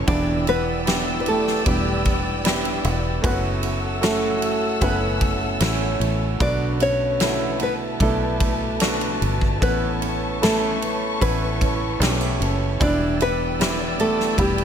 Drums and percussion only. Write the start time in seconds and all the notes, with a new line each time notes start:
0.07 kick, ride
0.47 ride
0.87 snare, ride
1.26 ride
1.47 snare
1.66 kick, ride
2.05 kick, ride
2.45 snare, ride
2.65 ride
2.84 ride
3.24 kick, ride
3.63 ride
4.03 snare, ride
4.42 ride
4.81 kick, ride
5.21 kick, ride
5.60 snare, ride
6.01 ride
6.40 kick, ride
6.80 ride
7.20 snare, ride
7.59 ride
8.00 kick, ride
8.40 kick, ride
8.80 snare, ride
9.01 ride
9.22 ride
9.41 kick
9.62 kick, ride
10.02 ride
10.43 snare, ride
10.82 ride
11.21 kick, ride
11.61 kick, ride
12.01 snare, ride
12.42 ride
12.81 kick, ride
13.20 ride
13.61 snare, ride
13.99 ride
14.20 snare
14.38 kick, ride
14.58 ride